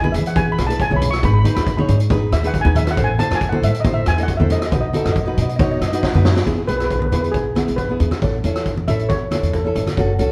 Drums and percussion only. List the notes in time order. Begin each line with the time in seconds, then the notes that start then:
0.04 high conga
0.14 closed hi-hat, low conga
0.26 closed hi-hat
0.36 kick, closed hi-hat, high conga
0.58 cross-stick, closed hi-hat
0.70 closed hi-hat
0.80 kick, closed hi-hat
0.91 high conga
1.02 closed hi-hat, low conga
1.13 cross-stick, closed hi-hat
1.23 kick, closed hi-hat
1.45 closed hi-hat, high conga
1.56 cross-stick, closed hi-hat, low conga
1.67 kick, closed hi-hat
1.78 high conga
1.88 closed hi-hat, low conga
2.00 closed hi-hat
2.10 kick, closed hi-hat, high conga
2.32 cross-stick, closed hi-hat
2.44 closed hi-hat
2.54 kick, closed hi-hat
2.65 high conga
2.75 closed hi-hat, low conga
2.87 cross-stick, closed hi-hat
2.97 kick, closed hi-hat
3.19 closed hi-hat, high conga
3.31 cross-stick, closed hi-hat, low conga
3.41 kick, closed hi-hat
3.52 high conga
3.63 closed hi-hat
3.74 closed hi-hat
3.85 kick, closed hi-hat, high conga
4.06 cross-stick, closed hi-hat
4.18 closed hi-hat
4.28 kick, closed hi-hat
4.40 high conga
4.50 closed hi-hat, low conga
4.62 cross-stick, closed hi-hat
4.72 kick, closed hi-hat
4.93 closed hi-hat, high conga
5.05 cross-stick, closed hi-hat, low conga
5.16 kick, closed hi-hat
5.37 closed hi-hat, low conga
5.49 closed hi-hat
5.59 kick, closed hi-hat, high conga
5.81 cross-stick, closed hi-hat
5.93 closed hi-hat
6.03 kick, snare
6.15 high conga
6.25 snare, low conga
6.36 snare
6.47 kick, closed hi-hat
6.68 closed hi-hat, low conga
6.80 cross-stick, closed hi-hat
6.91 kick, closed hi-hat
7.02 high conga
7.12 closed hi-hat, high conga, low conga
7.24 closed hi-hat
7.34 kick, closed hi-hat
7.56 cross-stick, closed hi-hat, high conga
7.68 closed hi-hat
7.78 kick, closed hi-hat
8.00 closed hi-hat, low conga
8.11 cross-stick, closed hi-hat, high conga
8.22 kick, closed hi-hat
8.44 closed hi-hat, low conga
8.56 cross-stick, closed hi-hat
8.66 kick, closed hi-hat
8.77 high conga
8.88 closed hi-hat, high conga, low conga
8.99 closed hi-hat
9.10 kick, closed hi-hat
9.31 cross-stick, closed hi-hat, high conga
9.43 closed hi-hat
9.53 kick, closed hi-hat
9.75 closed hi-hat, low conga
9.87 cross-stick, closed hi-hat, high conga
9.97 kick, closed hi-hat
10.19 closed hi-hat, low conga